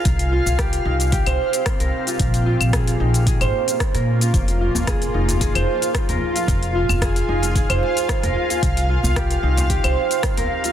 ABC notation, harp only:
X:1
M:4/4
L:1/16
Q:"Swing 16ths" 1/4=112
K:Fm
V:1 name="Harp"
z2 F z G z E z G c z3 B z F | z2 F z A z E z A c z3 B z F | z2 F z A z E z A c z3 B z F | z2 F z A z E z A c z3 B z F |
z2 F z G z E z G c z3 B z F |]